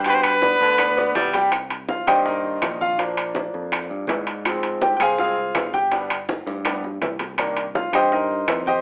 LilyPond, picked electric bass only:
\new Staff \with { instrumentName = "Picked electric bass" } { \clef bass \time 4/4 \key c \minor \tempo 4 = 164 g,4. d,4. c,4~ | c,4. g,4. bes,,4~ | bes,,4. f,4 g,8 aes,4~ | aes,4. c,4. g,,4~ |
g,,4. g,4. c,4~ | c,4. g,4. f,4 | }